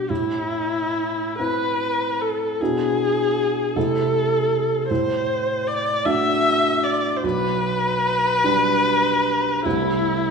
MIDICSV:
0, 0, Header, 1, 3, 480
1, 0, Start_track
1, 0, Tempo, 851064
1, 56, Time_signature, 6, 3, 24, 8
1, 1019, Tempo, 776197
1, 4379, Tempo, 804290
1, 5819, Tempo, 913242
1, 6162, End_track
2, 0, Start_track
2, 0, Title_t, "Viola"
2, 0, Program_c, 0, 41
2, 0, Note_on_c, 0, 67, 61
2, 56, Note_on_c, 0, 64, 66
2, 65, Note_off_c, 0, 67, 0
2, 779, Note_off_c, 0, 64, 0
2, 783, Note_on_c, 0, 71, 68
2, 1272, Note_on_c, 0, 69, 54
2, 1281, Note_off_c, 0, 71, 0
2, 1519, Note_on_c, 0, 68, 71
2, 1528, Note_off_c, 0, 69, 0
2, 2229, Note_on_c, 0, 69, 71
2, 2238, Note_off_c, 0, 68, 0
2, 2924, Note_off_c, 0, 69, 0
2, 2928, Note_on_c, 0, 72, 65
2, 3410, Note_on_c, 0, 74, 69
2, 3420, Note_off_c, 0, 72, 0
2, 3648, Note_on_c, 0, 76, 80
2, 3657, Note_off_c, 0, 74, 0
2, 4129, Note_on_c, 0, 74, 68
2, 4139, Note_off_c, 0, 76, 0
2, 4334, Note_on_c, 0, 72, 52
2, 4343, Note_off_c, 0, 74, 0
2, 4382, Note_on_c, 0, 71, 88
2, 4391, Note_off_c, 0, 72, 0
2, 5817, Note_off_c, 0, 71, 0
2, 5820, Note_on_c, 0, 64, 70
2, 6162, Note_off_c, 0, 64, 0
2, 6162, End_track
3, 0, Start_track
3, 0, Title_t, "Grand piano"
3, 0, Program_c, 1, 0
3, 0, Control_c, 1, 64, 127
3, 0, Note_on_c, 1, 47, 34
3, 0, Note_on_c, 1, 55, 27
3, 0, Note_on_c, 1, 59, 25
3, 0, Note_on_c, 1, 62, 26
3, 57, Note_on_c, 1, 45, 36
3, 68, Note_off_c, 1, 59, 0
3, 68, Control_c, 1, 64, 0
3, 69, Note_off_c, 1, 47, 0
3, 70, Note_off_c, 1, 62, 0
3, 72, Note_off_c, 1, 55, 0
3, 160, Control_c, 1, 64, 127
3, 762, Note_off_c, 1, 45, 0
3, 785, Note_on_c, 1, 60, 29
3, 790, Note_on_c, 1, 64, 34
3, 1486, Note_off_c, 1, 60, 0
3, 1488, Note_off_c, 1, 64, 0
3, 1513, Note_on_c, 1, 59, 28
3, 1516, Note_on_c, 1, 47, 40
3, 1519, Note_on_c, 1, 62, 30
3, 1520, Control_c, 1, 64, 0
3, 1521, Note_on_c, 1, 64, 27
3, 1602, Control_c, 1, 64, 127
3, 2203, Note_off_c, 1, 59, 0
3, 2206, Note_off_c, 1, 62, 0
3, 2207, Note_off_c, 1, 64, 0
3, 2208, Note_off_c, 1, 47, 0
3, 2228, Note_on_c, 1, 48, 40
3, 2228, Note_on_c, 1, 57, 30
3, 2231, Note_on_c, 1, 60, 32
3, 2234, Note_on_c, 1, 64, 32
3, 2236, Control_c, 1, 64, 0
3, 2331, Control_c, 1, 64, 127
3, 2909, Note_off_c, 1, 57, 0
3, 2911, Note_off_c, 1, 60, 0
3, 2912, Note_off_c, 1, 64, 0
3, 2913, Note_off_c, 1, 48, 0
3, 2936, Note_on_c, 1, 45, 44
3, 2941, Control_c, 1, 64, 0
3, 3039, Control_c, 1, 64, 127
3, 3628, Note_off_c, 1, 45, 0
3, 3645, Note_on_c, 1, 57, 33
3, 3647, Note_on_c, 1, 62, 37
3, 3648, Note_on_c, 1, 66, 37
3, 4352, Note_off_c, 1, 57, 0
3, 4353, Note_off_c, 1, 62, 0
3, 4353, Note_off_c, 1, 66, 0
3, 4376, Note_on_c, 1, 35, 43
3, 4387, Control_c, 1, 64, 0
3, 4500, Control_c, 1, 64, 127
3, 5068, Note_off_c, 1, 35, 0
3, 5095, Note_on_c, 1, 55, 36
3, 5095, Note_on_c, 1, 62, 34
3, 5097, Note_on_c, 1, 67, 38
3, 5797, Note_off_c, 1, 55, 0
3, 5797, Note_off_c, 1, 62, 0
3, 5798, Note_off_c, 1, 67, 0
3, 5819, Note_on_c, 1, 36, 43
3, 5821, Note_on_c, 1, 57, 29
3, 5824, Note_on_c, 1, 60, 30
3, 5825, Note_on_c, 1, 64, 30
3, 5828, Control_c, 1, 64, 0
3, 5937, Control_c, 1, 64, 127
3, 6162, Note_off_c, 1, 36, 0
3, 6162, Note_off_c, 1, 57, 0
3, 6162, Note_off_c, 1, 60, 0
3, 6162, Note_off_c, 1, 64, 0
3, 6162, End_track
0, 0, End_of_file